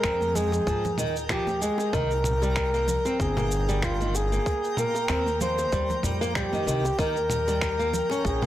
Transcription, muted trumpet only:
Already playing: A#4
0.36 G#4
1.31 G4
1.62 G#4
1.94 A#4
3.20 G#4
3.84 F4
4.16 G#4
4.79 A#4
5.42 C5
6.37 G4
6.99 A#4
8.26 G#4

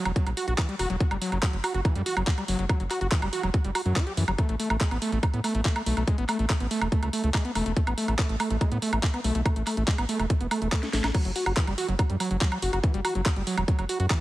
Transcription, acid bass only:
0.05 F#3
0.16 F#3
0.27 F#3
0.37 F#4
0.48 F#4
0.58 E3
0.69 G3
0.79 F#4
0.90 F#3
1.00 F#3
1.11 G3
1.22 F#3
1.32 F#3
1.43 F#3
1.53 F#3
1.64 F#4
1.74 F#4
1.85 E3
1.95 G3
2.06 F#4
2.17 F#3
2.27 F#3
2.38 G3
2.48 F#3
2.59 F#3
2.69 F#3
2.80 F#3
2.91 F#4
3.01 F#4
3.12 E3
3.22 G3
3.33 F#4
3.43 F#3
3.54 F#3
3.65 G3
3.75 F#4
3.86 F#3
3.96 F#4
4.07 G4
4.17 E3
4.28 F#3
4.38 A3
4.49 A3
4.60 A3
4.70 A3
4.81 G#3
4.91 B3
5.02 A3
5.12 A3
5.23 A3
5.34 B3
5.44 A3
5.55 A3
5.65 A3
5.76 A3
5.86 A3
5.97 A3
6.08 G#3
6.18 B3
6.29 A3
6.39 A3
6.50 A3
6.60 B3
6.71 A3
6.81 A3
6.92 A3
7.03 A3
7.13 A3
7.24 A3
7.34 G#3
7.45 B3
7.55 A3
7.66 A3
7.77 A3
7.87 B3
7.98 A3
8.08 A3
8.19 A3
8.29 A3
8.40 A3
8.50 A3
8.61 G#3
8.72 B3
8.82 A3
8.93 A3
9.03 A3
9.14 B3
9.24 A3
9.35 A3
9.46 A3
9.56 A3
9.67 A3
9.77 A3
9.88 G#3
9.98 B3
10.09 A3
10.20 A3
10.30 A3
10.41 B3
10.51 A3
10.62 A3
10.72 A3
10.83 A3
10.93 A3
11.04 A3
11.15 F#3
11.25 F#3
11.36 F#4
11.46 F#4
11.57 E3
11.67 G3
11.78 F#4
11.88 F#3
11.99 F#3
12.10 G3
12.20 F#3
12.31 F#3
12.41 F#3
12.52 F#3
12.62 F#4
12.73 F#4
12.84 E3
12.94 G3
13.05 F#4
13.15 F#3
13.26 F#3
13.36 G3
13.47 F#3
13.58 F#3
13.68 F#3
13.79 F#3
13.89 F#4
14.00 F#4
14.10 E3

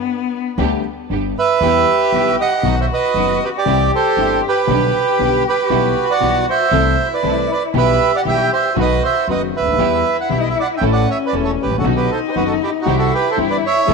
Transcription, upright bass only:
0.58 D2
1.10 G1
1.61 E2
2.12 B1
2.63 B1
3.14 F#1
3.66 C2
4.17 G1
4.67 B1
5.19 B1
5.70 B1
6.20 B1
6.71 C2
7.23 C2
7.74 B1
8.25 B1
8.77 B1
9.28 F#1
9.60 C#2
9.67 D2
9.73 D#2
9.78 E2
10.31 B1
10.81 A1
11.33 E1
11.65 G#1
11.72 A1
11.78 A#1
11.84 B1
12.36 F#1
12.87 C2
13.38 G1
13.88 C#2

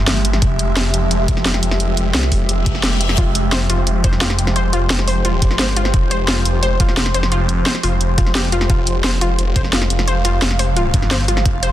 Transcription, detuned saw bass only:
Already playing: G1
0.42 F1
0.94 F1
1.11 F1
1.63 F1
2.14 C2
2.32 F1
3.18 F1
3.70 F1
3.87 F1
4.39 F1
4.90 F1
5.42 G1
5.94 F1
6.46 F1
6.63 F1
7.14 F1
7.83 F1
8.70 F1
9.21 F1
9.39 F1
9.90 F1
10.42 F1
10.94 G1
11.46 F1

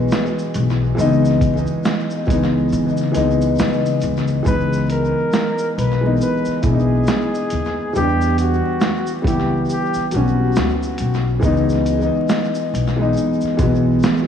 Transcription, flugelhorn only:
4.47 B4
4.91 A#4
5.78 B4
6.22 B4
6.66 G#4
7.96 G4
8.39 F#4
9.27 G4
9.70 G4
10.14 F#4

